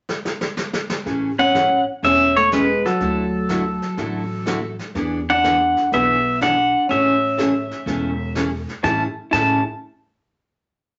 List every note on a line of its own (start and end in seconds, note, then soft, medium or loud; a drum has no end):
0.09 snare medium
0.25 snare medium
0.41 snare medium
0.57 snare medium
0.73 snare loud
0.90 snare loud
1.05 1.83 A1 medium
1.05 1.29 C#3 medium
1.05 1.29 E3 medium
1.05 1.29 A3 medium
1.05 1.29 C#4 medium
1.05 1.29 G#4 medium
1.05 brush sweep soft
1.05 snare soft
1.39 1.84 C#4 medium
1.39 1.84 F#5 loud
1.54 1.66 C#3 medium
1.54 1.67 E3 medium
1.54 1.67 A3 medium
1.54 1.67 C#4 medium
1.54 1.67 G#4 medium
1.54 snare medium
1.54 hi-hat pedal medium
2.02 2.81 E1 medium
2.02 2.26 C#3 medium
2.02 2.26 E3 medium
2.02 2.26 A3 medium
2.02 2.26 C#4 medium
2.02 2.35 C#4 medium
2.02 2.27 G#4 medium
2.02 2.38 E5 loud
2.02 brush sweep soft
2.02 snare soft
2.37 2.51 A3 medium
2.37 2.52 C#5 loud
2.52 2.64 C#3 medium
2.52 2.64 E3 medium
2.52 2.82 G#3 medium
2.52 2.64 A3 medium
2.52 2.64 C#4 medium
2.52 2.64 G#4 medium
2.52 2.86 B4 medium
2.52 snare medium
2.52 hi-hat pedal medium
2.85 4.76 F#3 medium
2.85 4.76 A4 medium
2.85 snare soft
3.00 3.78 D2 loud
3.00 3.23 D3 medium
3.00 3.23 F#3 medium
3.00 3.24 A3 medium
3.00 3.24 E4 medium
3.00 3.24 F#4 medium
3.00 brush sweep soft
3.00 snare soft
3.49 3.61 D3 medium
3.49 3.62 F#3 medium
3.49 3.62 A3 medium
3.49 3.62 E4 medium
3.49 3.62 F#4 medium
3.49 snare medium
3.49 hi-hat pedal soft
3.82 snare soft
3.97 4.75 A1 medium
3.97 4.20 D3 medium
3.97 4.21 F#3 medium
3.97 4.21 A3 medium
3.97 4.21 E4 medium
3.97 4.21 F#4 medium
3.97 brush sweep medium
3.97 snare soft
4.46 4.58 D3 medium
4.46 4.58 F#3 medium
4.46 4.59 A3 medium
4.46 4.59 E4 medium
4.46 4.59 F#4 medium
4.46 snare medium
4.46 hi-hat pedal medium
4.79 snare soft
4.95 5.73 E2 loud
4.95 5.18 E3 medium
4.95 5.18 B3 medium
4.95 5.19 D4 medium
4.95 5.19 G#4 medium
4.95 brush sweep soft
4.95 snare soft
5.30 5.89 D4 medium
5.30 5.89 F#5 loud
5.44 5.56 E3 medium
5.44 5.56 B3 medium
5.44 5.57 D4 medium
5.44 5.57 G#4 medium
5.44 snare medium
5.44 hi-hat pedal medium
5.77 snare soft
5.92 6.70 B1 loud
5.92 6.16 E3 medium
5.92 6.16 B3 medium
5.92 6.38 B3 medium
5.92 6.16 D4 medium
5.92 6.16 G#4 medium
5.92 6.42 E5 medium
5.92 brush sweep soft
5.92 snare soft
6.41 6.53 E3 medium
6.41 6.54 B3 medium
6.41 6.54 D4 medium
6.41 6.87 D4 medium
6.41 6.54 G#4 medium
6.41 6.87 F#5 medium
6.41 snare medium
6.41 hi-hat pedal medium
6.89 7.67 A1 medium
6.89 7.13 C#3 medium
6.89 7.13 E3 medium
6.89 7.13 A3 medium
6.89 8.31 C#4 medium
6.89 7.13 C#4 medium
6.89 7.13 G#4 medium
6.89 8.32 E5 medium
6.89 brush sweep soft
6.89 snare soft
7.37 7.50 C#3 medium
7.37 7.50 E3 medium
7.37 7.50 A3 medium
7.37 7.50 C#4 medium
7.37 7.51 G#4 medium
7.37 snare medium
7.37 hi-hat pedal medium
7.71 snare soft
7.86 8.64 E1 medium
7.86 8.09 C#3 medium
7.86 8.10 E3 medium
7.86 8.10 A3 medium
7.86 8.10 C#4 medium
7.86 8.10 G#4 medium
7.86 brush sweep medium
7.86 snare soft
8.35 8.48 C#3 medium
8.35 8.48 E3 medium
8.35 8.48 A3 medium
8.35 8.48 C#4 medium
8.35 8.48 G#4 medium
8.35 snare medium
8.35 hi-hat pedal medium
8.68 snare soft
8.83 9.02 A1 medium
8.83 9.03 A2 medium
8.83 9.04 C#3 medium
8.83 9.04 E3 medium
8.83 9.04 A3 medium
8.83 9.04 C#4 medium
8.83 9.02 E4 medium
8.83 9.04 G#4 medium
8.83 9.02 A5 medium
8.83 kick medium
8.83 snare medium
9.31 9.63 A1 medium
9.31 9.59 A2 medium
9.31 9.59 C#3 medium
9.31 9.59 E3 medium
9.31 9.59 A3 medium
9.31 9.59 C#4 medium
9.31 9.62 E4 medium
9.31 9.60 G#4 medium
9.31 9.63 A5 medium
9.31 kick loud
9.31 snare medium
9.31 crash medium